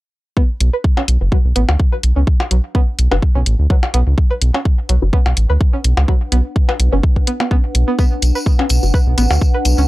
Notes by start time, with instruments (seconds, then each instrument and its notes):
0.37 synth pluck B3, ambient pad D4, kick
0.60 analog synth bass B1, closed hi-hat
0.67 ambient pad B4
0.73 synth pluck B4
0.84 kick
0.93 synth pluck C#4, ambient pad F#5, percussion blips
1.08 analog synth bass B1, closed hi-hat
1.21 analog synth bass F#1, synth stab D4 F#4 B4
1.32 synth pluck F#3, kick
1.45 analog synth bass B1
1.56 analog synth bass A1, synth pluck B3, closed hi-hat
1.69 analog synth bass D2, synth stab D4 F#4 B4, percussion blips
1.80 kick
1.92 synth pluck B4
2.03 analog synth bass B1, closed hi-hat
2.16 analog synth bass C#2, synth pluck C#4
2.27 kick
2.40 percussion blips
2.51 analog synth bass B1, synth pluck F#3, closed hi-hat
2.75 synth pluck B3, kick
2.99 analog synth bass B1, closed hi-hat
3.11 analog synth bass F#1, synth stab D4 F#4 B4, synth pluck B4, percussion blips
3.22 kick
3.35 analog synth bass B1, synth pluck C#4
3.46 analog synth bass A1, closed hi-hat
3.59 analog synth bass D2
3.70 synth pluck F#3, kick
3.83 percussion blips
3.94 analog synth bass B1, synth pluck B3, closed hi-hat
4.07 analog synth bass C#2
4.18 kick
4.31 synth pluck B4
4.42 analog synth bass B1, closed hi-hat
4.54 synth pluck C#4, percussion blips
4.65 kick
4.89 analog synth bass B1, synth pluck F#3, closed hi-hat
5.02 analog synth bass F#1, synth stab D4 F#4 B4
5.13 synth pluck B3, kick
5.26 analog synth bass B1, percussion blips
5.37 analog synth bass A1, closed hi-hat
5.50 analog synth bass D2, synth pluck B4
5.61 kick
5.73 synth pluck C#4
5.84 analog synth bass B1, closed hi-hat
5.97 analog synth bass C#2, percussion blips
6.08 synth pluck F#3, kick
6.32 analog synth bass B1, synth pluck B3, closed hi-hat
6.56 kick
6.69 synth pluck B4, percussion blips
6.80 analog synth bass B1, closed hi-hat
6.92 analog synth bass F#1, synth pluck C#4, synth stab D4 F#4 B4
7.03 kick
7.16 kick
7.27 synth pluck B3, closed hi-hat
7.40 synth pluck B3, percussion blips
7.51 synth pluck B3, kick
7.75 analog synth bass B1, closed hi-hat
7.88 synth pluck B3
7.98 synth pluck B3, kick, tambourine
8.22 analog synth bass B1, closed hi-hat, tambourine
8.35 synth pluck B4, tambourine
8.46 kick, tambourine
8.59 synth pluck C#4, percussion blips
8.69 analog synth bass B1, closed hi-hat, tambourine
8.83 analog synth bass F#1, synth stab D4 F#4 B4, tambourine
8.94 synth pluck B4, kick, tambourine
9.07 analog synth bass B1
9.18 analog synth bass A1, synth pluck B3, closed hi-hat, tambourine
9.31 analog synth bass D2, synth stab D4 F#4 B4, tambourine, percussion blips
9.41 kick, tambourine
9.54 synth pluck B4
9.65 analog synth bass B1, closed hi-hat, tambourine
9.78 analog synth bass C#2, synth pluck C#4, tambourine